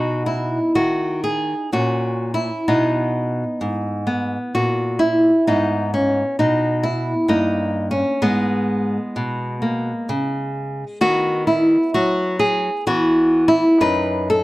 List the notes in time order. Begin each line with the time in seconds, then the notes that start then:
Already playing: B2 D#4 F#4
0.26 E4
0.75 D#3 F#4
1.24 G#4
1.73 A#2 C#4 F#4
2.34 E4
2.68 B2 B3 D#4
3.61 G#2
4.07 B3
4.55 A#2 F#4
4.99 E4
5.47 G#2 B3 D#4
5.94 C#4
6.39 B2 D#4
6.83 E4
7.28 G2 A#3 D#4
7.91 C#4
8.22 G#2 G#3 B3
9.16 B2
9.62 A#3
10.09 C#3
11.01 D#3 B3 F#4
11.47 E4
11.94 F#3 F#4
12.39 G#4
12.87 E3 B3 F#4
13.48 E4
13.81 F#2 D#4 B4
14.30 A4